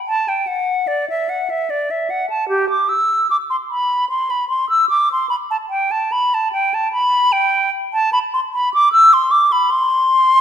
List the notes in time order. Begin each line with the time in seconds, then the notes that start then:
0.08 A5
0.28 G5
0.47 F#5
0.87 D5
1.10 E5
1.29 F#5
1.50 E5
1.70 D5
1.91 E5
2.10 F#5
2.30 A5
2.49 G4
2.70 D6
2.89 E6
3.31 D6
3.50 C6
3.70 B5
4.10 C6
4.30 B5
4.49 C6
4.70 E6
4.90 D6
5.12 C6
5.30 B5
5.51 A5
5.70 G5
5.91 A5
6.12 B5
6.34 A5
6.53 G5
6.74 A5
6.92 B5
7.32 G5
7.93 A5
8.13 B5
8.34 C6
8.53 B5
8.74 D6
8.93 E6
9.13 C6
9.31 D6
9.52 B5
9.71 C6